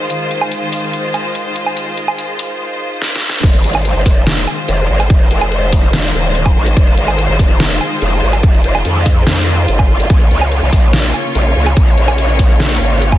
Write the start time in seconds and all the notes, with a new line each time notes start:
Already playing: D#3 G#3 F4 C5
0.10 closed hi-hat
0.31 closed hi-hat
0.41 low woodblock
0.52 closed hi-hat
0.72 open hi-hat
0.93 closed hi-hat
1.14 closed hi-hat, low woodblock
1.35 closed hi-hat
1.56 closed hi-hat
1.66 low woodblock
1.77 closed hi-hat
1.98 closed hi-hat
2.08 low woodblock
2.18 closed hi-hat
2.39 open hi-hat
3.02 snare
3.16 snare
3.29 snare
3.43 F1 D#3 G#3 F4 C5, kick, closed hi-hat, crash
3.64 G#1, closed hi-hat
3.75 low woodblock
3.85 closed hi-hat
3.96 G1
4.06 F1, kick, open hi-hat
4.27 snare, closed hi-hat
4.37 closed hi-hat
4.48 closed hi-hat, low woodblock
4.68 F1, closed hi-hat
4.89 G#1
5.00 closed hi-hat, low woodblock
5.10 F1, kick, closed hi-hat
5.31 F1, closed hi-hat
5.41 closed hi-hat, low woodblock
5.52 closed hi-hat
5.72 kick, open hi-hat
5.93 snare, closed hi-hat
6.04 closed hi-hat
6.14 D#1, closed hi-hat
6.35 closed hi-hat
6.46 kick, low woodblock
6.56 G#1
6.66 closed hi-hat
6.77 F1, kick, closed hi-hat
6.97 G#1, closed hi-hat
7.08 low woodblock
7.18 closed hi-hat
7.29 G1
7.39 F1, kick, open hi-hat
7.60 snare, closed hi-hat
7.71 closed hi-hat
7.81 closed hi-hat, low woodblock
8.02 F1, closed hi-hat
8.22 G#1
8.33 closed hi-hat, low woodblock
8.43 F1, kick, closed hi-hat
8.64 F1, closed hi-hat
8.75 closed hi-hat, low woodblock
8.85 F2, closed hi-hat
9.06 kick, open hi-hat
9.27 F2, snare, closed hi-hat
9.37 closed hi-hat
9.48 closed hi-hat
9.68 G1, closed hi-hat
9.79 kick, low woodblock
10.00 G#1, closed hi-hat
10.10 A#1 C#3 A#3 C#5, kick, closed hi-hat
10.31 C#2, closed hi-hat
10.41 low woodblock
10.52 closed hi-hat
10.62 C2
10.72 A#1, kick, open hi-hat
10.93 snare, closed hi-hat
11.04 closed hi-hat
11.14 closed hi-hat, low woodblock
11.35 A#1, closed hi-hat
11.56 C#2
11.66 closed hi-hat, low woodblock
11.77 A#1, kick, closed hi-hat
11.98 A#1, closed hi-hat
12.08 closed hi-hat, low woodblock
12.18 closed hi-hat
12.39 kick, open hi-hat
12.60 snare, closed hi-hat
12.71 closed hi-hat
12.81 G#1, closed hi-hat
13.02 closed hi-hat
13.12 kick, low woodblock